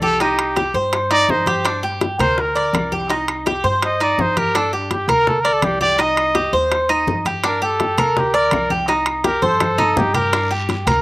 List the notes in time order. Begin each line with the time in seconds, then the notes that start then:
Already playing: C2
0.02 G4 A4, high bongo, high conga
0.20 D#4 G4, high bongo, high conga, high timbale
0.39 high bongo, high conga, high timbale, claves
0.56 G4, high bongo, high conga, high timbale
0.74 G2 C5, high bongo, high conga
0.93 high bongo, high conga, high timbale, claves
1.11 D#4 D5, high conga, high timbale
1.29 G2 C5, high bongo, low bongo, high conga
1.46 G4, high bongo, high conga, high timbale
1.65 D4, high bongo, high conga, high timbale, claves
1.83 G4, high bongo, high conga
2.01 high bongo, high conga, high timbale
2.19 D2 A#4 C5, high bongo, high conga, low conga, high timbale, claves
2.38 A#4, high bongo, high conga
2.55 D5, high conga, high timbale
2.73 C2, high bongo, low bongo, high conga, high timbale, claves
2.92 G4, high bongo, high conga
3.09 D#4, high bongo, high conga, high timbale
3.28 high bongo, high conga, high timbale, claves
3.46 G4, high bongo, high conga, high timbale
3.64 G2 C5, high bongo, high conga
3.82 D#5, high bongo, high conga, high timbale, claves
4.00 D#4 D5, high conga, high timbale
4.18 G2 C5, high bongo, low bongo, high conga
4.37 G4 A#4, high bongo, high conga, high timbale
4.55 D4 A4, high bongo, high conga, high timbale, claves
4.73 D4 G4, high bongo, high conga
4.91 G4, high bongo, high conga, high timbale
5.08 D2 A#4, high bongo, high conga, low conga, high timbale, claves
5.27 A4, high bongo, high conga, low conga
5.41 A#4 D5, high conga, high timbale
5.53 A4
5.62 C2 G4, high bongo, low bongo, high conga, high timbale, claves
5.81 G4 D5, high bongo, high conga
5.98 D#4 D#5, high bongo, high conga, high timbale
6.17 high bongo, high conga, high timbale, claves
6.35 G4, high bongo, high conga, high timbale
6.53 D#2 C5, high bongo, high conga
6.71 high bongo, high conga, high timbale, claves
6.89 D#4, high conga, high timbale
7.07 G2, high bongo, low bongo, high conga
7.25 G4, high bongo, high conga, high timbale
7.44 D4 A#4, high bongo, high timbale, claves
7.62 G4 A4, high bongo, high conga
7.80 high bongo, high conga, high timbale
7.98 D2 A#4, high bongo, high conga, low conga, high timbale, claves
8.17 G4, high bongo, high conga, low conga
8.34 A#4 D5, high conga, high timbale
8.51 C2, high bongo, low bongo, high conga, high timbale, claves
8.70 G4, high bongo, high conga
8.88 D#4, high bongo, high conga, high timbale
9.06 high bongo, high conga, high timbale, claves
9.24 G4 A#4, high bongo, high conga, high timbale
9.42 G2 A4 C5, high bongo, high conga
9.60 high bongo, high conga, high timbale, claves
9.78 D#4, low conga, high timbale
9.96 G2 G4, high bongo, low bongo, low conga
10.14 G4 A#4, high bongo, low conga, high timbale
10.33 D4, high bongo, high conga, high timbale, long guiro, claves
10.51 G4, high bongo, high conga
10.69 high bongo, high conga, high timbale, short guiro
10.87 D2 A#4, high bongo, high conga, low conga, high timbale, short guiro, claves